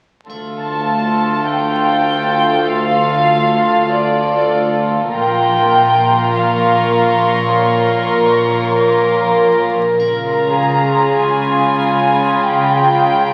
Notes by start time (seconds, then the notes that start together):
0.29 D2 F4 A4, triangle
0.61 A5
1.51 G5
2.72 F5
3.95 D5
5.14 A#1 A#2 F4 A#4 G5 A#5
5.75 C6
6.36 F5 C#6
7.57 C#5
8.84 D6
9.99 C#2 C#3 F4 F5, triangle
10.31 A#5
10.60 G#4 A#5
11.20 G#5 B5
12.43 G5